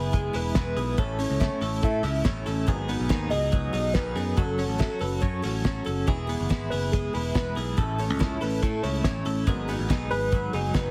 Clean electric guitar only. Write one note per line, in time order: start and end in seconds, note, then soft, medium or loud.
0.00 0.98 E3 medium
0.00 0.54 B3 medium
0.00 0.34 E4 medium
0.00 0.75 G#4 medium
0.13 1.02 G#3 medium
0.34 1.02 E4 soft
0.55 1.02 B3 medium
0.77 0.98 G#4 medium
0.98 2.67 A2 medium
0.98 1.60 A4 medium
1.19 2.24 C#4 soft
1.40 2.03 E4 medium
1.62 2.45 A4 medium
1.83 2.72 A3 medium
2.04 2.72 E4 medium
2.25 2.72 C#4 medium
2.46 2.68 A4 medium
2.68 4.38 G#2 medium
2.68 3.30 G#4 medium
2.89 3.93 B3 medium
3.10 3.72 D#4 medium
3.31 4.15 G#4 medium
3.52 4.36 F#3 medium
3.73 4.42 D#4 medium
3.95 4.42 B3 medium
4.16 4.37 G#4 medium
4.37 6.07 F#3 medium
4.37 5.00 A4 medium
4.59 5.21 C#4 medium
4.80 4.90 E4 medium
4.90 5.42 F#4 soft
5.01 5.85 A4 medium
5.22 5.64 C#4 medium
5.44 6.12 F#4 soft
5.65 6.12 C#4 soft
5.86 6.07 A4 medium
6.08 7.78 E3 medium
6.08 6.71 G#4 medium
6.29 7.34 B3 medium
6.50 7.14 E4 medium
6.72 7.55 G#4 medium
6.93 7.82 G#3 medium
7.14 7.82 E4 medium
7.35 7.82 B3 medium
7.56 7.78 G#4 medium
7.78 9.46 A2 medium
7.78 8.40 A4 medium
7.99 9.03 C#4 medium
8.20 8.82 E4 medium
8.41 9.25 A4 medium
8.62 9.52 A3 medium
8.83 9.51 E4 medium
9.05 9.52 C#4 medium
9.26 9.47 A4 medium
9.47 10.91 G#2 medium
9.47 10.10 G#4 medium
9.69 10.74 B3 medium
9.90 10.53 D#4 medium
10.11 10.91 G#4 medium
10.33 10.91 F#3 medium
10.54 10.91 D#4 medium
10.75 10.91 B3 medium